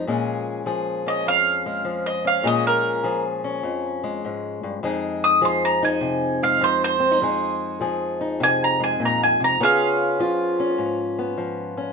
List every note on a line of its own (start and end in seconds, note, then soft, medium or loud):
0.00 0.66 F3 medium
0.07 1.26 A#2 medium
0.07 1.65 G#3 medium
0.07 1.06 C#4 medium
0.07 0.66 G#4 medium
0.66 1.84 F3 medium
0.66 2.45 G#4 medium
1.06 2.24 C#4 medium
1.06 1.26 D#5 medium
1.26 2.45 F2 medium
1.26 2.04 F5 medium
1.66 2.44 G#3 medium
1.85 3.03 F3 medium
2.06 2.24 D#5 medium
2.25 2.42 C#4 medium
2.25 2.45 F5 medium
2.43 3.63 A#2 medium
2.43 4.03 G#3 medium
2.43 3.43 C#4 medium
2.43 3.04 G#4 medium
2.43 2.65 D#5 medium
2.67 3.23 A#4 medium
3.04 4.88 F3 medium
3.04 4.85 G#4 medium
3.44 4.81 C#4 medium
3.63 4.23 F2 medium
4.04 4.83 G#3 medium
4.25 4.63 G#2 medium
4.63 4.83 G2 medium
4.83 7.20 F2 medium
4.83 6.42 G#3 medium
4.83 5.82 D#4 medium
4.83 5.42 G#4 medium
5.24 5.42 D#6 medium
5.41 6.61 F3 medium
5.41 7.23 G#4 medium
5.41 5.63 C6 medium
5.65 5.83 A#5 medium
5.83 6.99 D#4 medium
5.83 6.41 G#5 medium
6.01 6.61 C3 medium
6.43 7.21 G#3 medium
6.43 6.62 F5 medium
6.61 7.25 F3 medium
6.61 6.82 C5 medium
6.84 7.99 C5 loud
7.00 7.11 C4 medium
7.11 7.21 D#4 medium
7.21 9.60 F2 medium
7.21 8.79 G#3 medium
7.21 8.20 D#4 medium
7.21 7.81 G#4 medium
7.81 9.57 F3 medium
7.81 9.58 G#4 medium
8.21 9.58 D#4 medium
8.40 8.99 C3 medium
8.40 8.61 G#5 loud
8.64 8.81 A#5 medium
8.80 9.60 G#3 medium
8.80 9.01 G#5 medium
9.00 9.39 A#2 medium
9.05 9.22 A#5 medium
9.23 9.41 G#5 medium
9.40 9.60 C3 medium
9.44 9.61 A#5 medium
9.60 10.20 C#3 medium
9.60 11.17 B3 medium
9.60 10.59 C#4 medium
9.60 10.19 F4 medium
9.60 10.77 G#4 medium
9.65 10.78 F5 medium
10.19 11.36 F3 medium
10.19 11.93 F4 medium
10.60 11.76 C#4 medium
10.78 11.93 G#2 medium
11.19 11.93 B3 medium
11.37 11.93 F3 medium
11.77 11.93 C#4 medium